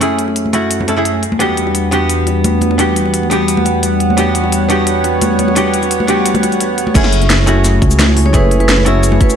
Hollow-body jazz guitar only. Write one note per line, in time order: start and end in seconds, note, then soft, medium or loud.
0.01 0.51 A3 medium
0.01 0.51 C#4 medium
0.01 0.52 E4 medium
0.01 0.52 G#4 medium
0.53 0.86 A3 medium
0.53 0.87 C#4 medium
0.53 0.87 E4 medium
0.53 0.87 F#4 medium
0.88 0.95 A3 medium
0.88 0.95 C#4 medium
0.88 0.95 E4 medium
0.88 0.95 A4 medium
0.96 1.22 A3 medium
0.96 1.22 C#4 medium
0.96 1.22 E4 medium
0.96 1.22 G#4 medium
1.39 1.90 B3 medium
1.39 1.90 D4 medium
1.39 1.90 F#4 medium
1.39 1.91 G4 loud
1.91 2.77 B3 medium
1.91 2.77 D4 medium
1.91 2.77 F#4 medium
1.91 2.78 G4 loud
2.78 3.29 B3 medium
2.78 3.29 D4 medium
2.78 3.29 F#4 medium
2.78 3.30 G4 loud
3.30 4.15 B3 medium
3.30 4.16 D4 medium
3.30 4.16 F#4 medium
3.30 4.16 G4 loud
4.17 4.67 B3 medium
4.17 4.68 D4 medium
4.17 4.68 F#4 medium
4.17 4.69 G4 loud
4.69 5.54 B3 medium
4.69 5.54 D4 medium
4.69 5.55 F#4 medium
4.69 5.55 G4 loud
5.55 6.06 B3 medium
5.55 6.06 D4 medium
5.55 6.07 F#4 medium
5.55 6.07 G4 loud
6.07 6.93 B3 medium
6.07 6.93 D4 medium
6.07 6.93 F#4 medium
6.07 6.94 G4 loud
6.94 7.45 A3 medium
6.94 7.45 C#4 medium
6.94 7.46 E4 medium
6.94 7.46 G#4 loud
7.46 8.31 A3 medium
7.46 8.32 C#4 medium
7.46 8.32 E4 medium
7.46 8.33 F#4 loud
8.33 8.83 A3 medium
8.33 8.84 C#4 medium
8.33 8.84 E4 medium
8.33 8.85 G#4 loud
8.85 9.36 A3 loud
8.85 9.36 C#4 medium
8.85 9.36 E4 medium
8.85 9.36 F#4 loud